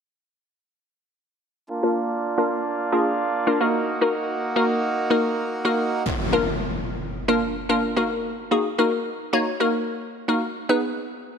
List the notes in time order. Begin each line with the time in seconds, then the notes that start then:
1.70 A#3 D4 F4
1.83 A#3 D4 F4 A#4
2.38 A#3 D4 F4 A#4
2.92 A#3 D4 F4 G#4
3.47 A#3 D4 F4 A#4
3.60 A#3 D#4 F#4 A#4
4.01 A#3 D#4 F#4 A#4
4.56 A#3 D#4 F#4 A#4
5.10 A#3 D#4 F#4 A#4
5.65 A#3 D#4 F#4 A#4
6.06 impact
6.33 A#3 D4 F4 A#4
7.28 A#3 D4 F4 A#4
7.69 A#3 D4 F4 A#4
7.96 A#3 D#4 F#4 A#4
8.51 A#3 D#4 F#4 G#4
8.78 A#3 D#4 F#4 A#4
9.33 A#3 D#4 F#4 C#5
9.60 A#3 D#4 F#4 A#4
10.28 A#3 D#4 F#4 A#4
10.69 B3 D#4 G#4 B4